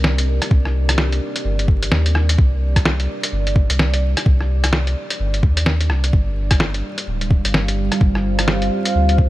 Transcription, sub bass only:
0, 0, Header, 1, 2, 480
1, 0, Start_track
1, 0, Key_signature, -3, "minor"
1, 0, Tempo, 468750
1, 522, Time_signature, 4, 2, 24, 8
1, 9513, End_track
2, 0, Start_track
2, 0, Title_t, "Sub bass"
2, 0, Program_c, 0, 38
2, 0, Note_on_c, 0, 36, 96
2, 409, Note_off_c, 0, 36, 0
2, 522, Note_on_c, 0, 36, 92
2, 1230, Note_off_c, 0, 36, 0
2, 1479, Note_on_c, 0, 31, 96
2, 1949, Note_off_c, 0, 31, 0
2, 1960, Note_on_c, 0, 39, 102
2, 2430, Note_off_c, 0, 39, 0
2, 2443, Note_on_c, 0, 36, 93
2, 3151, Note_off_c, 0, 36, 0
2, 3401, Note_on_c, 0, 31, 82
2, 3769, Note_off_c, 0, 31, 0
2, 3790, Note_on_c, 0, 36, 99
2, 4251, Note_off_c, 0, 36, 0
2, 4364, Note_on_c, 0, 36, 98
2, 5071, Note_off_c, 0, 36, 0
2, 5320, Note_on_c, 0, 31, 93
2, 5559, Note_on_c, 0, 39, 89
2, 5574, Note_off_c, 0, 31, 0
2, 6040, Note_on_c, 0, 36, 99
2, 6056, Note_off_c, 0, 39, 0
2, 6266, Note_off_c, 0, 36, 0
2, 6279, Note_on_c, 0, 31, 98
2, 6989, Note_off_c, 0, 31, 0
2, 7240, Note_on_c, 0, 26, 80
2, 7609, Note_off_c, 0, 26, 0
2, 7628, Note_on_c, 0, 31, 102
2, 8089, Note_off_c, 0, 31, 0
2, 8202, Note_on_c, 0, 31, 95
2, 8910, Note_off_c, 0, 31, 0
2, 9165, Note_on_c, 0, 38, 93
2, 9513, Note_off_c, 0, 38, 0
2, 9513, End_track
0, 0, End_of_file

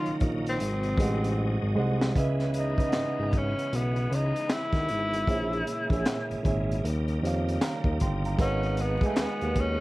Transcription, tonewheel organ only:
0, 0, Header, 1, 2, 480
1, 0, Start_track
1, 0, Key_signature, 4, "minor"
1, 0, Tempo, 779221
1, 1329, Time_signature, 4, 2, 24, 8
1, 6039, End_track
2, 0, Start_track
2, 0, Title_t, "Tonewheel organ"
2, 0, Program_c, 0, 16
2, 0, Note_on_c, 0, 49, 69
2, 0, Note_on_c, 0, 54, 68
2, 0, Note_on_c, 0, 58, 60
2, 0, Note_on_c, 0, 63, 77
2, 343, Note_off_c, 0, 49, 0
2, 358, Note_on_c, 0, 56, 68
2, 359, Note_off_c, 0, 58, 0
2, 359, Note_on_c, 0, 48, 75
2, 1305, Note_off_c, 0, 54, 0
2, 1309, Note_off_c, 0, 63, 0
2, 1314, Note_off_c, 0, 48, 0
2, 1314, Note_off_c, 0, 56, 0
2, 1328, Note_on_c, 0, 52, 67
2, 1329, Note_on_c, 0, 49, 58
2, 1329, Note_on_c, 0, 59, 53
2, 1332, Note_on_c, 0, 56, 50
2, 3230, Note_off_c, 0, 59, 0
2, 3231, Note_off_c, 0, 56, 0
2, 3255, Note_on_c, 0, 56, 56
2, 3256, Note_on_c, 0, 58, 53
2, 4184, Note_off_c, 0, 52, 0
2, 4202, Note_off_c, 0, 56, 0
2, 4203, Note_off_c, 0, 58, 0
2, 4209, Note_on_c, 0, 55, 57
2, 4209, Note_on_c, 0, 63, 71
2, 4211, Note_on_c, 0, 58, 62
2, 5144, Note_off_c, 0, 49, 0
2, 5159, Note_off_c, 0, 55, 0
2, 5159, Note_off_c, 0, 63, 0
2, 5160, Note_off_c, 0, 58, 0
2, 5166, Note_on_c, 0, 56, 59
2, 5167, Note_on_c, 0, 51, 62
2, 5168, Note_on_c, 0, 66, 65
2, 5170, Note_on_c, 0, 59, 56
2, 6039, Note_off_c, 0, 51, 0
2, 6039, Note_off_c, 0, 56, 0
2, 6039, Note_off_c, 0, 59, 0
2, 6039, Note_off_c, 0, 66, 0
2, 6039, End_track
0, 0, End_of_file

